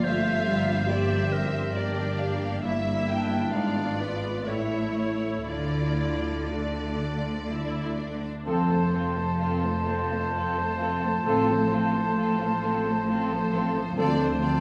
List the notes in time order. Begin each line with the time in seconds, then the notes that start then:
Already playing: F3 A#3 F4 D5
0.04 G1 G2 A3 C5 E5 F5
0.32 D3
0.48 G3
0.59 A#3
0.88 A#3 F4 G4 D5 E5
1.16 D5
1.32 C4 A#4 C5
1.45 F4
1.75 A#3 D4 G4 D5
2.04 D3
2.19 F5
2.34 A#3
2.63 G1 G2 A#3 E4 E5
2.92 A#3
3.07 D4 G5
3.22 E4 E5
3.51 G#1 G#2 B3 F4 D5 F5
3.84 B3
3.99 B4 D5
4.15 F4 D5
4.45 A1 A2 A3 E4 C#5 E5
4.80 A3
4.96 C#5
5.14 E4 C#5
5.47 D2 D3 A3 E4 F4 D5
5.84 D4
6.18 A3
6.51 A3 D4 F4 D5
6.84 D5
7.16 F4
7.49 A3 E4
7.81 D4
7.98 D4
8.14 A3
8.45 F1 F2 F3 C4 F4 A4 C5 A5
8.70 A3 A4 C5
8.93 C4 F4 A4 C5
9.16 A3 A4 C5
9.40 C4 F4 A4 F5
9.64 A3 A4 C5 C6
9.86 C4 F4 A4 A5
10.09 A3 A4 C5 F5
10.34 C4 F4 A4 C5
10.57 A3 A4 C5
10.79 C4 F4 A4
11.03 A3 A4 C5
11.26 A1 A2 F3 C4 F4 A4
11.49 F3 A3 A4 C5
11.72 C4 F4 A4
11.94 A3 A4 C5
12.17 C4 F4 A4
12.40 A3 A4 C5 F5
12.63 C4 F4 A4 C6
12.86 A3 A4 C5
13.08 C4 F4 A4
13.31 F3 A3 A4 C5
13.53 A3 C4 F4 A4
13.74 F3 A3 A4
13.78 C5
13.95 D2 D3 F3 C4 F4 A4 C5 A5
13.99 C4 D5
14.18 A3 D4
14.22 C5
14.40 C4 F4 D5